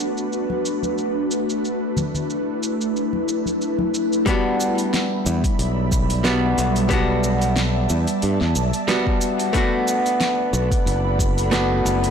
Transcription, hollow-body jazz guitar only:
0.00 4.22 A3 medium
0.00 4.23 B3 medium
0.00 4.24 D4 medium
0.00 4.25 F#4 medium
4.26 6.21 G3 medium
4.26 6.22 B3 medium
4.26 6.22 D4 medium
4.30 6.23 F#4 medium
6.24 6.87 G3 medium
6.24 6.87 B3 medium
6.24 6.88 D4 medium
6.24 6.88 F#4 medium
6.89 8.84 G3 medium
6.89 8.85 B3 medium
6.89 8.86 D4 medium
6.93 8.86 F#4 medium
8.88 9.51 G3 medium
8.88 9.51 B3 medium
8.88 9.51 D4 medium
8.88 9.52 F#4 medium
9.53 11.48 A3 medium
9.53 11.49 B3 medium
9.53 11.49 D4 medium
9.57 11.50 F#4 medium
11.51 12.10 A3 medium
11.51 12.10 B3 medium
11.51 12.10 D4 medium
11.51 12.10 F#4 medium

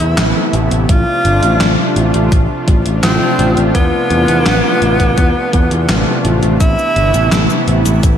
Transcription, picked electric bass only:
0.00 0.14 E2 medium
0.18 0.32 A1 loud
0.53 0.68 A1 loud
0.71 0.86 A1 medium
0.89 1.04 A1 loud
1.25 1.39 G1 medium
1.43 1.57 A1 medium
1.61 1.75 A1 loud
1.96 2.11 A1 medium
2.14 2.29 A1 medium
2.32 2.46 A1 loud
2.68 2.82 A1 loud
2.85 3.00 A1 medium
3.03 3.18 A1 loud
3.39 3.54 A1 loud
3.57 3.71 A1 medium
3.75 3.89 E2 loud
4.11 4.25 E2 medium
4.28 4.43 E2 medium
4.46 4.61 A1 loud
4.82 4.96 A1 medium
5.00 5.14 A1 medium
5.18 5.32 E2 loud
5.53 5.68 E2 loud
5.71 5.86 E2 medium
5.89 6.04 A1 loud
6.25 6.39 A1 loud
6.43 6.57 A1 medium
6.96 7.11 G1 medium
7.14 7.29 A1 medium
7.32 7.46 A1 loud
7.68 7.82 A1 loud
7.86 8.00 A1 medium
8.03 8.18 A1 loud

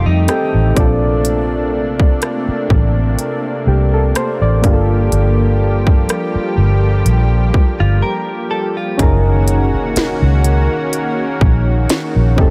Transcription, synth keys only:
0.00 0.23 C4 medium
0.00 0.24 D#4 medium
0.00 0.25 G4 medium
0.00 0.26 A4 medium
0.28 0.74 C4 medium
0.28 0.77 D#4 medium
0.28 0.77 G4 medium
0.28 0.78 A4 medium
0.28 0.74 G5 medium
0.75 4.59 C4 medium
0.75 4.60 D4 medium
0.75 4.61 F4 medium
0.75 1.22 D5 medium
0.80 3.16 A4 medium
3.68 3.92 G4 medium
3.94 4.15 A4 medium
4.16 4.40 C5 medium
4.42 4.88 D5 medium
4.62 8.46 A#3 medium
4.62 8.47 D4 medium
4.62 8.47 F4 medium
4.67 4.72 G4 medium
4.73 8.52 A4 medium
8.98 12.33 C#4 medium
8.98 12.34 D#4 medium
8.98 12.35 G#4 medium
9.02 12.36 A#4 medium
12.36 12.50 C4 medium
12.36 12.50 D#4 medium
12.36 12.50 G4 medium
12.41 12.50 A4 medium

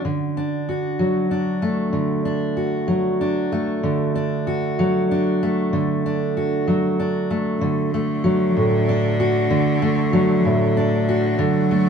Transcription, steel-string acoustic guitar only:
0.00 0.67 F#4 medium
0.05 1.92 D3 medium
0.37 1.31 D4 soft
0.69 2.56 F#4 soft
0.99 2.87 F#3 medium
1.31 2.25 D4 soft
1.62 3.52 A3 medium
1.93 3.83 D3 medium
2.25 3.20 D4 soft
2.57 4.47 F#4 soft
2.88 4.79 F#3 medium
3.21 4.15 D4 soft
3.52 5.42 A3 soft
3.83 5.72 D3 medium
4.15 5.11 D4 soft
4.47 6.36 F#4 medium
4.79 6.67 F#3 medium
5.11 6.05 D4 soft
5.43 7.29 A3 soft
5.73 7.59 D3 medium
6.06 6.98 D4 soft
6.37 9.19 F#4 soft
6.68 7.59 F#3 soft
7.00 7.59 D4 soft
7.31 7.93 A3 soft
7.61 9.50 D3 medium
7.94 9.82 A3 soft
8.24 10.13 F#3 medium
8.57 9.47 A2 medium
8.89 10.76 D4 medium
9.20 11.08 F#4 medium
9.50 11.38 D3 medium
9.82 11.71 A3 medium
10.13 11.89 F#3 medium
10.45 11.35 A2 medium
10.77 11.89 D4 soft
11.09 11.89 F#4 medium
11.39 11.89 D3 medium
11.71 11.89 A3 soft

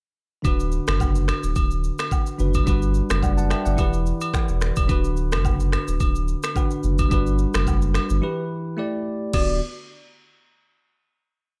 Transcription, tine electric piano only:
0.42 2.34 D3 medium
0.42 2.35 D4 medium
0.42 2.36 F#4 medium
0.47 2.36 B4 medium
2.38 2.66 D3 medium
2.38 2.65 D4 soft
2.38 2.67 F#4 soft
2.38 2.67 B4 medium
2.64 3.74 G3 medium
2.64 3.75 D4 medium
2.64 3.76 F#4 medium
2.69 3.77 B4 medium
3.22 3.37 D5 medium
3.22 3.37 F#5 medium
3.37 3.50 F#5 medium
3.37 3.49 A5 medium
3.50 3.65 E5 medium
3.50 3.65 G5 medium
3.65 3.92 D5 medium
3.65 3.92 F#5 medium
3.75 4.85 E3 medium
3.75 4.86 E4 medium
3.75 4.87 G4 medium
3.80 4.88 B4 medium
4.86 6.51 D3 medium
4.86 6.52 D4 medium
4.86 6.53 F#4 medium
4.91 6.53 B4 medium
6.54 7.11 D3 medium
6.54 7.09 D4 medium
6.54 7.11 F#4 medium
6.54 7.12 B4 medium
7.09 8.19 G3 medium
7.09 8.20 D4 medium
7.09 8.20 F#4 medium
7.13 8.21 B4 medium
8.21 8.77 E3 medium
8.21 8.76 E4 medium
8.21 8.77 G4 medium
8.21 8.78 B4 medium
8.77 9.33 A3 medium
8.77 9.33 E4 medium
8.77 9.34 G4 medium
8.77 9.32 D5 medium
9.34 9.59 D3 medium
9.34 9.59 B3 medium
9.34 9.59 F#4 medium
9.34 9.59 D5 medium

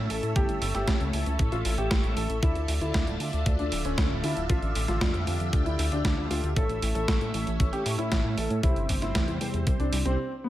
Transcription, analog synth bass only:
0.10 0.21 A1 medium
0.23 0.34 A2 medium
0.36 0.47 G1 loud
0.49 0.60 G1 medium
0.62 0.73 G1 loud
0.75 0.86 G1 medium
0.88 0.99 C#2 loud
1.01 1.12 C#2 medium
1.13 1.25 C#2 loud
1.26 1.37 C#2 medium
1.39 1.50 A1 loud
1.52 1.63 A1 medium
1.65 1.76 A1 loud
1.78 1.89 A1 medium
1.91 2.02 A1 loud
2.04 2.15 A1 medium
2.17 2.28 A1 medium
2.30 2.41 A1 medium
2.43 2.54 D2 loud
2.55 2.67 D2 medium
2.68 2.80 D2 loud
2.81 2.93 D2 medium
2.94 3.06 D2 loud
3.07 3.18 D1 medium
3.20 3.31 D2 loud
3.33 3.44 D2 medium
3.46 3.57 D2 loud
3.59 3.70 D2 medium
3.72 3.83 D1 medium
3.85 3.96 D1 medium
3.98 4.09 D2 loud
4.11 4.22 D1 medium
4.24 4.35 D2 medium
4.37 4.48 D1 medium
4.50 4.61 A1 loud
4.63 4.74 A1 medium
4.75 4.87 A1 loud
4.88 5.00 A1 medium
5.01 5.12 F2 loud
5.14 5.25 F2 medium
5.27 5.38 F2 medium
5.40 5.51 F2 medium
5.53 5.64 D2 loud
5.66 5.77 D2 medium
5.79 5.90 D2 medium
5.92 6.03 D2 medium
6.05 6.16 D2 loud
6.18 6.29 D2 medium
6.31 6.42 D2 medium
6.44 6.55 D2 medium
6.56 6.68 A1 loud
6.69 6.81 A1 medium
6.82 6.93 A1 loud
6.95 7.07 A1 medium
7.08 7.19 A1 loud
7.21 7.32 A2 medium
7.34 7.45 A1 medium
7.47 7.58 A1 medium
7.60 7.71 A1 loud
7.73 7.84 A1 medium
7.86 7.97 A2 medium
7.99 8.10 A2 medium
8.12 8.23 A1 loud
8.24 8.36 A2 medium
8.37 8.49 A1 medium
8.50 8.62 A2 medium
8.63 8.75 C2 loud
8.76 8.87 G1 medium
8.89 9.00 G1 medium
9.02 9.13 G1 medium
9.15 9.26 E2 loud
9.28 9.39 E2 medium
9.41 9.52 E2 medium
9.54 9.65 E2 medium
9.67 9.78 C2 loud
9.80 9.91 C2 medium
9.93 10.04 C2 medium
10.06 10.17 C2 medium

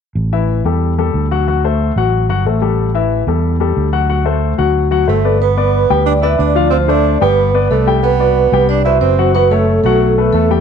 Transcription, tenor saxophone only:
5.07 5.38 A3 medium
5.41 6.02 B3 medium
6.06 6.13 D4 medium
6.21 6.37 E4 medium
6.37 6.69 D4 medium
6.70 6.78 C4 medium
6.87 7.18 D4 medium
7.21 7.67 B3 medium
7.70 8.01 A3 medium
8.02 8.64 B3 medium
8.69 8.84 D4 medium
8.84 8.99 E4 medium
9.00 9.31 C4 medium
9.33 9.49 B3 medium
9.49 9.81 A3 medium
9.82 10.29 A3 medium
10.33 10.61 A3 medium

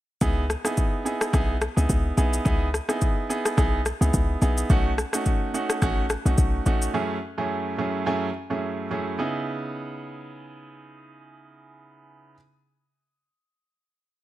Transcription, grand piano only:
0.21 0.43 B3 medium
0.21 0.43 D#4 medium
0.21 0.43 E4 medium
0.21 0.43 G#4 loud
0.64 1.02 B3 medium
0.64 1.03 D#4 medium
0.64 1.03 E4 medium
0.64 1.03 G#4 medium
1.05 1.31 B3 medium
1.05 1.31 D#4 medium
1.05 1.31 E4 medium
1.05 1.32 G#4 medium
1.33 1.55 B3 medium
1.33 1.55 D#4 medium
1.33 1.55 E4 medium
1.33 1.55 G#4 loud
1.76 2.14 B3 medium
1.76 2.15 D#4 medium
1.76 2.15 E4 medium
1.76 2.15 G#4 medium
2.17 2.43 B3 medium
2.17 2.44 D#4 medium
2.17 2.44 E4 medium
2.17 2.44 G#4 medium
2.45 2.67 B3 medium
2.45 2.67 D#4 medium
2.45 2.67 E4 medium
2.45 2.67 G#4 loud
2.89 3.27 B3 medium
2.89 3.27 D#4 medium
2.89 3.27 E4 medium
2.89 3.27 G#4 medium
3.29 3.56 B3 medium
3.29 3.56 D#4 medium
3.29 3.56 E4 medium
3.29 3.56 G#4 medium
3.57 3.79 B3 medium
3.57 3.80 D#4 medium
3.57 3.80 E4 medium
3.57 3.80 G#4 medium
4.01 4.39 B3 medium
4.01 4.39 D#4 medium
4.01 4.39 E4 medium
4.01 4.39 G#4 medium
4.42 4.68 B3 medium
4.42 4.68 D#4 medium
4.42 4.68 E4 medium
4.42 4.68 G#4 medium
4.70 4.92 A3 medium
4.70 4.92 C#4 medium
4.70 4.92 D#4 medium
4.70 4.92 F#4 loud
5.13 5.51 A3 medium
5.13 5.51 C#4 medium
5.13 5.51 D#4 medium
5.13 5.51 F#4 medium
5.54 5.80 A3 medium
5.54 5.80 C#4 medium
5.54 5.80 D#4 medium
5.54 5.80 F#4 medium
5.82 6.04 A3 medium
5.82 6.04 C#4 medium
5.82 6.04 D#4 medium
5.82 6.04 F#4 loud
6.25 6.63 A3 medium
6.25 6.63 C#4 medium
6.25 6.63 D#4 medium
6.25 6.63 F#4 medium
6.66 6.92 A3 medium
6.66 6.92 C#4 medium
6.66 6.92 D#4 medium
6.66 6.93 F#4 medium
6.94 7.16 F#2 medium
6.94 7.16 A3 medium
6.94 7.16 C#4 medium
6.94 7.16 E4 medium
6.94 7.16 G#4 medium
7.38 7.75 F#2 medium
7.38 7.75 A3 medium
7.38 7.75 C#4 medium
7.38 7.76 E4 medium
7.38 7.76 G#4 medium
7.78 8.04 F#2 medium
7.78 8.04 A3 medium
7.78 8.05 C#4 medium
7.78 8.05 E4 medium
7.78 8.05 G#4 medium
8.06 8.28 F#2 medium
8.06 8.28 A3 medium
8.06 8.28 C#4 medium
8.06 8.28 E4 medium
8.06 8.28 G#4 loud
8.50 8.88 F#2 medium
8.50 8.88 A3 medium
8.50 8.88 C#4 medium
8.50 8.88 E4 medium
8.50 8.88 G#4 medium
8.91 9.17 F#2 medium
8.91 9.17 A3 medium
8.91 9.17 C#4 medium
8.91 9.17 E4 medium
8.91 9.17 G#4 medium
9.18 12.34 C#3 medium
9.18 12.34 B3 medium
9.18 12.34 D#4 medium
9.18 12.35 E4 medium
9.18 12.35 G#4 medium

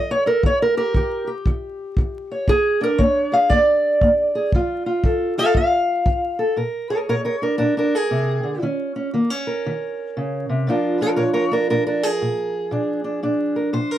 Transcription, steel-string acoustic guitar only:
0.00 0.40 F3 medium
0.00 0.25 A4 soft
0.11 0.27 C#5 medium
0.26 0.42 A4 soft
0.26 0.44 A#4 medium
0.43 0.91 D#3 medium
0.43 0.62 C#5 loud
0.62 0.76 A#4 medium
0.77 0.95 G4 medium
0.77 1.29 A#4 loud
0.96 1.43 D#3 medium
0.96 1.26 G4 medium
1.27 2.46 G4 soft
1.47 1.94 D#3 medium
1.98 2.45 D#3 medium
2.32 2.47 C#5 soft
2.48 2.95 A#3 medium
2.48 2.83 G#4 loud
2.81 4.51 D4 medium
2.81 3.00 A#4 medium
2.98 3.47 A#3 medium
2.98 3.33 C#5 medium
3.32 4.34 G#4 soft
3.32 3.50 F5 loud
3.49 3.98 A#3 medium
3.49 5.03 D5 loud
4.03 4.49 A#3 medium
4.35 4.51 G#4 medium
4.55 5.01 F3 medium
4.55 4.85 F4 medium
4.86 5.37 F4 medium
5.04 5.51 F3 medium
5.04 5.37 A4 soft
5.38 6.56 F4 soft
5.38 5.55 A4 medium
5.38 5.55 F5 loud
5.56 6.03 F3 medium
5.56 6.57 F5 loud
6.06 6.53 F3 medium
6.39 6.55 A4 soft
6.56 7.04 A#2 medium
6.56 6.90 A#4 soft
6.90 7.43 G#4 soft
6.90 6.98 A#4 medium
6.90 7.08 C#5 medium
7.09 7.56 A#2 medium
7.09 7.14 A#4 medium
7.09 7.24 C#5 medium
7.25 7.35 A#4 medium
7.25 7.42 C#5 medium
7.42 7.57 D4 soft
7.42 7.57 A#4 medium
7.58 8.07 A#2 medium
7.58 7.76 D4 medium
7.58 7.76 A#4 medium
7.77 7.95 D4 medium
7.77 8.46 A#4 medium
7.95 8.63 G#4 medium
8.11 8.43 C3 medium
8.43 8.62 D3 medium
8.62 9.10 D#3 medium
8.62 8.94 C#4 medium
8.96 9.13 C#4 soft
9.14 9.61 D#3 medium
9.14 9.30 A#3 soft
9.30 10.67 C#4 soft
9.47 10.70 A#4 soft
9.66 10.13 D#3 medium
10.17 10.48 C#3 medium
10.49 10.68 C3 medium
10.67 11.14 A#2 medium
10.67 13.98 F3 soft
10.67 11.52 D4 medium
10.67 11.01 F4 medium
10.67 11.02 A#4 medium
11.01 11.51 F4 medium
11.01 11.09 A#4 medium
11.01 11.16 C#5 medium
11.16 11.66 A#2 medium
11.16 11.22 A#4 medium
11.16 11.33 C#5 medium
11.33 11.44 A#4 medium
11.33 11.52 C#5 medium
11.52 11.69 D4 medium
11.52 11.69 A#4 medium
11.70 12.17 A#2 medium
11.70 11.85 D4 medium
11.70 11.85 A#4 medium
11.87 12.03 D4 medium
11.87 12.54 A#4 medium
12.03 13.57 G#4 loud
12.22 12.68 A#2 medium
12.71 13.18 A#2 medium
12.71 13.03 D4 soft
13.04 13.22 D4 soft
13.23 13.70 A#2 medium
13.23 13.98 D4 soft
13.56 13.73 A#4 soft
13.73 13.98 A#2 medium
13.73 13.91 C5 medium
13.91 13.98 A#4 medium

